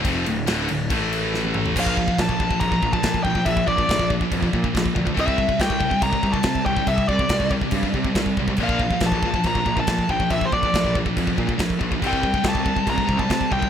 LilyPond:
<<
  \new Staff \with { instrumentName = "Lead electric guitar" } { \time 4/4 \key bes \lydian \tempo 4 = 140 r1 | f''4 a''4 bes''8. a''8. g''8 | e''8 d''4 r2 r8 | e''4 g''4 bes''8. a''8. g''8 |
e''8 d''4 r2 r8 | f''4 a''4 bes''8. a''8. g''8 | \tuplet 3/2 { e''8 c''16 d''8.~ } d''8 r2 r8 | \tuplet 3/2 { g''4~ g''16 g''16 } a''4 bes''8. a''8. g''8 | }
  \new Staff \with { instrumentName = "Distorted electric guitar" } { \clef bass \time 4/4 \key bes \lydian <f, c f>8 <d, a,>8 <d, a, d>8 <d, a,>8 <a, e a>2 | <bes, f bes>8 <bes, f>16 <bes, f>16 <bes, f>16 <bes, f>16 <bes, f>16 <bes, f>16 <bes, f>16 <bes, f>16 <bes, f>16 <bes, f>16 <bes, f>8 <bes, f>16 <bes, f>16 | <bes, f>8 <bes, f>16 <bes, f>16 <bes, f>16 <bes, f>16 <bes, f>16 <bes, f>16 <bes, f>16 <bes, f>16 <bes, f>16 <bes, f>16 <bes, f>8 <bes, f>16 <bes, f>16 | <c g c'>8 <c g>16 <c g>16 <c g>16 <c g>16 <c g>16 <c g>16 <c g>16 <c g>16 <c g>16 <c g>16 <c g>8 <c g>16 <c g>16 |
<c g>8 <c g>16 <c g>16 <c g>16 <c g>16 <c g>16 <c g>16 <c g>16 <c g>16 <c g>16 <c g>16 <c g>8 <c g>16 <c g>16 | <bes, f bes>8 <bes, f>16 <bes, f>16 <bes, f>16 <bes, f>16 <bes, f>16 <bes, f>16 <bes, f>16 <bes, f>16 <bes, f>16 <bes, f>16 <bes, f>8 <bes, f>16 <bes, f>16 | <bes, f>8 <bes, f>16 <bes, f>16 <bes, f>16 <bes, f>16 <bes, f>16 <bes, f>16 <bes, f>16 <bes, f>16 <bes, f>16 <bes, f>16 <bes, f>8 <bes, f>16 <bes, f>16 | <c g c'>8 <c g>16 <c g>16 <c g>16 <c g>16 <c g>16 <c g>16 <c g>16 <c g>16 <c g>16 <c g>16 <c g>8 <c g>16 <c g>16 | }
  \new Staff \with { instrumentName = "Distorted electric guitar" } { \clef bass \time 4/4 \key bes \lydian <f, c f>8 <d, a,>8 <d, a, d>8 <d, a,>8 <a, e a>2 | <bes, f bes>8 <bes, f>16 <bes, f>16 <bes, f>16 <bes, f>16 <bes, f>16 <bes, f>16 <bes, f>16 <bes, f>16 <bes, f>16 <bes, f>16 <bes, f>8 <bes, f>16 <bes, f>16 | <bes, f>8 <bes, f>16 <bes, f>16 <bes, f>16 <bes, f>16 <bes, f>16 <bes, f>16 <bes, f>16 <bes, f>16 <bes, f>16 <bes, f>16 <bes, f>8 <bes, f>16 <bes, f>16 | <c g c'>8 <c g>16 <c g>16 <c g>16 <c g>16 <c g>16 <c g>16 <c g>16 <c g>16 <c g>16 <c g>16 <c g>8 <c g>16 <c g>16 |
<c g>8 <c g>16 <c g>16 <c g>16 <c g>16 <c g>16 <c g>16 <c g>16 <c g>16 <c g>16 <c g>16 <c g>8 <c g>16 <c g>16 | <bes, f bes>8 <bes, f>16 <bes, f>16 <bes, f>16 <bes, f>16 <bes, f>16 <bes, f>16 <bes, f>16 <bes, f>16 <bes, f>16 <bes, f>16 <bes, f>8 <bes, f>16 <bes, f>16 | <bes, f>8 <bes, f>16 <bes, f>16 <bes, f>16 <bes, f>16 <bes, f>16 <bes, f>16 <bes, f>16 <bes, f>16 <bes, f>16 <bes, f>16 <bes, f>8 <bes, f>16 <bes, f>16 | <c g c'>8 <c g>16 <c g>16 <c g>16 <c g>16 <c g>16 <c g>16 <c g>16 <c g>16 <c g>16 <c g>16 <c g>8 <c g>16 <c g>16 | }
  \new Staff \with { instrumentName = "Picked electric bass" } { \clef bass \time 4/4 \key bes \lydian f,,8 d,,8 d,,8 d,,8 a,,2 | bes,,4 bes,,4 bes,,8 bes,,8 bes,8 bes,,8 | bes,,8 bes,,8 bes,,4 f,8 bes,8 bes,,8 d,8 | c,4 c,4 c,8 c,8 c8 c,8 |
c,8 c,8 c,4 g,8 c8 c,8 c,8 | bes,,4 bes,,4 bes,,8 bes,,8 bes,8 bes,,8 | bes,,8 bes,,8 bes,,4 f,8 bes,8 bes,,8 bes,,8 | c,4 c,4 c,8 c,8 c8 c,8 | }
  \new DrumStaff \with { instrumentName = "Drums" } \drummode { \time 4/4 <cymc bd>8 cymc8 <cymc sn>8 cymc8 <cymc bd>8 cymc8 sn16 tommh16 toml16 tomfh16 | <cymc bd>16 bd16 bd16 bd16 <cymc bd sn>16 bd16 bd16 bd16 <cymc bd>16 bd16 bd16 bd16 <cymc bd sn>16 bd16 bd16 bd16 | <cymc bd>16 bd16 bd16 bd16 <cymc bd sn>16 bd16 bd16 bd16 <cymc bd>16 bd16 bd16 bd16 <cymc bd sn>16 bd16 bd16 bd16 | <cymc bd>16 bd16 bd16 bd16 <cymc bd sn>16 bd16 bd16 bd16 <cymc bd>16 bd16 bd16 bd16 <cymc bd sn>16 bd16 bd16 bd16 |
<cymc bd>16 bd16 bd16 bd16 <cymc bd sn>16 bd16 bd16 bd16 <cymc bd>16 bd16 bd16 bd16 <cymc bd sn>16 bd16 bd16 bd16 | <cymc bd>16 bd16 bd16 bd16 <cymc bd sn>16 bd16 bd16 bd16 <cymc bd>16 bd16 bd16 bd16 <cymc bd sn>16 bd16 bd16 bd16 | <cymc bd>16 bd16 bd16 bd16 <cymc bd sn>16 bd16 bd16 bd16 <cymc bd>16 bd16 bd16 bd16 <cymc bd sn>16 bd16 bd16 bd16 | <cymc bd>16 bd16 bd16 bd16 <cymc bd sn>16 bd16 bd16 bd16 <cymc bd>16 bd16 bd16 bd16 <cymc bd sn>16 bd16 bd16 bd16 | }
>>